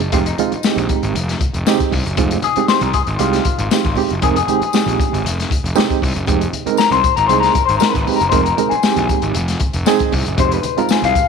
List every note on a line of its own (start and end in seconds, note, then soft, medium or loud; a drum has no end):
0.00 0.12 D4 medium
0.00 closed hi-hat medium
0.12 0.31 F1 loud
0.12 0.26 G#3 medium
0.12 0.26 C4 medium
0.12 0.26 D#4 medium
0.12 0.18 F4 medium
0.12 0.26 G4 medium
0.12 kick loud
0.12 closed hi-hat medium
0.12 low conga medium
0.26 1.50 D#4 medium
0.26 closed hi-hat medium
0.38 0.52 G#3 medium
0.38 0.52 C4 medium
0.38 0.52 D#4 medium
0.38 0.52 F4 loud
0.38 closed hi-hat medium
0.38 high conga medium
0.52 muted picked electric bass stroke soft
0.52 closed hi-hat soft
0.63 1.14 G#3 medium
0.63 1.14 C4 medium
0.63 1.15 D#4 medium
0.63 1.15 G4 medium
0.63 snare loud
0.63 tambourine medium
0.63 muted conga soft
0.76 0.86 A#1 medium
0.76 closed hi-hat medium
0.76 muted conga soft
0.76 high conga medium
0.89 kick medium
0.89 closed hi-hat medium
0.89 high conga medium
0.89 low conga medium
1.03 1.12 G#1 medium
1.03 closed hi-hat medium
1.14 1.34 F1 loud
1.14 closed hi-hat medium
1.14 muted conga soft
1.14 high conga medium
1.29 snare soft
1.29 closed hi-hat medium
1.40 kick loud
1.40 closed hi-hat medium
1.40 high conga medium
1.54 1.63 F1 medium
1.54 closed hi-hat soft
1.66 1.92 G#3 medium
1.66 1.92 C4 medium
1.66 1.92 D#4 loud
1.66 1.92 G4 loud
1.66 snare loud
1.66 tambourine loud
1.66 muted conga soft
1.79 kick medium
1.79 closed hi-hat soft
1.79 high conga medium
1.91 2.02 C2 medium
1.91 kick medium
1.91 open hi-hat medium
1.91 low conga medium
2.05 2.14 F#1 medium
2.05 closed hi-hat soft
2.17 2.36 F1 loud
2.17 2.37 G#3 medium
2.17 2.37 C4 medium
2.17 2.37 D#4 medium
2.17 2.37 F4 medium
2.17 kick loud
2.17 closed hi-hat medium
2.17 low conga medium
2.30 closed hi-hat medium
2.30 muted conga soft
2.42 2.68 G#4 medium
2.42 closed hi-hat medium
2.42 high conga medium
2.56 2.88 G#3 medium
2.56 2.88 C4 medium
2.56 2.88 D#4 medium
2.56 2.88 G4 medium
2.56 muted picked electric bass stroke soft
2.56 closed hi-hat soft
2.68 2.82 C5 loud
2.68 snare loud
2.68 tambourine loud
2.68 muted conga soft
2.81 2.91 C2 medium
2.81 2.94 A#4 medium
2.81 closed hi-hat medium
2.81 high conga medium
2.93 3.01 G#4 medium
2.93 kick loud
2.93 closed hi-hat medium
2.93 high conga soft
2.93 low conga medium
3.07 3.16 G#1 medium
3.07 closed hi-hat soft
3.19 3.39 C2 medium
3.19 3.45 G#3 medium
3.19 3.45 C4 medium
3.19 3.45 D#4 medium
3.19 4.18 F4 medium
3.19 3.45 G4 loud
3.19 closed hi-hat medium
3.19 muted conga soft
3.19 high conga medium
3.33 snare soft
3.33 closed hi-hat medium
3.45 kick medium
3.45 closed hi-hat medium
3.45 high conga medium
3.59 3.68 G#1 medium
3.59 closed hi-hat medium
3.71 3.85 G#3 medium
3.71 3.85 C4 medium
3.71 3.85 D#4 medium
3.71 3.85 G4 medium
3.71 muted picked electric bass stroke soft
3.71 snare loud
3.71 tambourine loud
3.71 muted conga soft
3.84 3.94 G#1 medium
3.84 kick medium
3.84 closed hi-hat soft
3.84 muted conga soft
3.84 high conga medium
3.95 4.10 G#3 medium
3.95 4.10 C4 medium
3.95 4.10 D#4 medium
3.95 4.10 G4 loud
3.95 open hi-hat medium
3.95 low conga medium
4.10 4.20 F#1 medium
4.10 closed hi-hat medium
4.22 4.41 F1 loud
4.22 4.36 G#3 medium
4.22 4.36 C4 medium
4.22 4.36 D#4 medium
4.22 4.28 G#4 loud
4.22 4.36 A#4 medium
4.22 kick loud
4.22 closed hi-hat medium
4.22 muted conga soft
4.22 low conga medium
4.36 5.60 G#4 medium
4.36 closed hi-hat medium
4.48 4.61 G#3 medium
4.48 4.62 C4 medium
4.48 4.62 D#4 medium
4.48 4.62 G4 medium
4.48 closed hi-hat medium
4.48 high conga medium
4.62 muted picked electric bass stroke soft
4.62 closed hi-hat soft
4.73 5.24 G#3 medium
4.73 5.24 C4 medium
4.73 5.24 D#4 medium
4.73 5.24 G4 medium
4.73 snare loud
4.73 tambourine loud
4.73 muted conga soft
4.86 4.96 A#1 medium
4.86 closed hi-hat medium
4.86 high conga loud
4.98 kick loud
4.98 closed hi-hat medium
4.98 high conga medium
4.98 low conga medium
5.13 5.22 G#1 medium
5.13 closed hi-hat medium
5.24 5.44 F1 loud
5.24 closed hi-hat medium
5.24 muted conga soft
5.24 high conga medium
5.40 snare soft
5.40 closed hi-hat medium
5.50 kick loud
5.50 closed hi-hat medium
5.50 high conga medium
5.64 5.73 F1 medium
5.64 closed hi-hat medium
5.75 6.01 G#3 medium
5.75 6.01 C4 medium
5.75 6.01 D#4 loud
5.75 6.01 G4 loud
5.75 snare loud
5.75 tambourine loud
5.75 muted conga soft
5.90 kick medium
5.90 closed hi-hat soft
5.90 high conga medium
6.02 6.12 C2 medium
6.02 kick medium
6.02 open hi-hat medium
6.02 low conga medium
6.15 6.24 F#1 medium
6.15 closed hi-hat medium
6.27 6.46 F1 loud
6.27 6.47 G#3 medium
6.27 6.47 C4 medium
6.27 6.47 D#4 medium
6.27 6.47 G4 medium
6.27 kick loud
6.27 closed hi-hat medium
6.27 low conga medium
6.41 closed hi-hat medium
6.41 muted conga soft
6.53 closed hi-hat medium
6.53 high conga medium
6.66 6.97 G#3 medium
6.66 6.97 C4 medium
6.66 6.98 D#4 medium
6.66 6.98 A#4 medium
6.66 muted picked electric bass stroke soft
6.66 closed hi-hat soft
6.77 6.91 A#4 medium
6.77 snare medium
6.77 tambourine medium
6.91 7.00 C2 medium
6.91 7.16 C5 medium
6.91 closed hi-hat medium
6.91 high conga medium
7.04 kick loud
7.04 closed hi-hat medium
7.04 high conga medium
7.04 low conga medium
7.16 7.27 G#1 medium
7.16 7.27 A#4 medium
7.16 closed hi-hat medium
7.27 7.48 C2 medium
7.27 7.55 G#3 medium
7.27 7.55 C4 medium
7.27 7.55 D#4 medium
7.27 7.55 G#4 medium
7.27 7.40 C5 loud
7.27 closed hi-hat medium
7.27 muted conga soft
7.27 high conga medium
7.40 7.65 A#4 medium
7.40 snare soft
7.40 closed hi-hat medium
7.40 muted conga soft
7.54 kick loud
7.54 closed hi-hat medium
7.54 high conga medium
7.66 7.78 G#1 medium
7.66 7.77 C5 loud
7.66 closed hi-hat medium
7.78 7.94 G#3 medium
7.78 7.94 C4 medium
7.78 7.94 D#4 medium
7.78 7.90 A#4 medium
7.78 7.94 A#4 medium
7.78 tambourine loud
7.82 muted picked electric bass stroke soft
7.82 snare loud
7.90 8.16 B4 loud
7.94 8.04 G#1 medium
7.94 kick loud
7.94 closed hi-hat soft
7.94 muted conga soft
7.94 high conga medium
8.07 8.20 G#3 medium
8.07 8.20 C4 medium
8.07 8.20 D#4 medium
8.07 8.20 G4 medium
8.07 open hi-hat medium
8.07 low conga medium
8.16 8.28 A#4 loud
8.20 8.30 F#1 medium
8.20 closed hi-hat medium
8.29 8.51 F1 loud
8.29 8.45 G#3 medium
8.29 8.45 C4 medium
8.29 8.46 D#4 medium
8.29 8.46 A#4 medium
8.29 8.42 C5 loud
8.29 kick loud
8.29 closed hi-hat medium
8.29 muted conga soft
8.29 low conga medium
8.43 8.71 A#4 medium
8.43 closed hi-hat medium
8.58 8.71 G#3 medium
8.58 8.72 C4 medium
8.58 8.72 D#4 medium
8.58 8.72 A#4 medium
8.58 closed hi-hat medium
8.58 high conga medium
8.69 9.44 G#4 medium
8.69 muted picked electric bass stroke soft
8.69 closed hi-hat soft
8.83 9.34 G#3 medium
8.83 9.34 C4 medium
8.83 9.34 D#4 medium
8.83 9.34 G4 loud
8.83 snare loud
8.83 tambourine loud
8.96 9.06 A#1 medium
8.96 closed hi-hat medium
8.96 muted conga soft
8.96 high conga loud
9.09 kick loud
9.09 closed hi-hat medium
9.09 high conga soft
9.09 low conga medium
9.22 9.32 G#1 medium
9.22 closed hi-hat medium
9.34 9.54 F1 loud
9.34 closed hi-hat medium
9.34 high conga medium
9.48 snare soft
9.48 closed hi-hat medium
9.60 kick medium
9.60 closed hi-hat medium
9.60 high conga medium
9.73 9.83 F1 medium
9.73 closed hi-hat medium
9.86 10.12 G#3 loud
9.86 10.12 C4 loud
9.86 10.12 D#4 medium
9.86 10.12 G#4 loud
9.86 snare loud
9.86 tambourine loud
9.99 kick loud
9.99 closed hi-hat medium
9.99 high conga medium
10.12 10.23 C2 medium
10.12 kick medium
10.12 open hi-hat medium
10.12 low conga medium
10.26 10.35 F#1 medium
10.26 closed hi-hat medium
10.38 10.57 F1 loud
10.38 10.57 G#3 medium
10.38 10.58 C4 medium
10.38 10.58 D#4 medium
10.38 10.58 G4 medium
10.38 10.52 C5 loud
10.38 kick loud
10.38 closed hi-hat medium
10.38 low conga medium
10.51 10.77 B4 medium
10.51 closed hi-hat medium
10.51 muted conga soft
10.63 closed hi-hat medium
10.63 high conga medium
10.78 11.08 G#3 medium
10.78 11.08 C4 medium
10.78 11.09 D#4 medium
10.78 11.09 F4 medium
10.78 10.89 A#4 medium
10.78 muted picked electric bass stroke soft
10.78 closed hi-hat soft
10.89 11.04 G#4 medium
10.89 snare loud
10.89 tambourine loud
10.89 muted conga soft
11.02 11.12 C2 medium
11.02 11.28 F5 medium
11.02 closed hi-hat medium
11.02 high conga loud
11.15 kick loud
11.15 closed hi-hat medium
11.15 high conga medium
11.15 low conga medium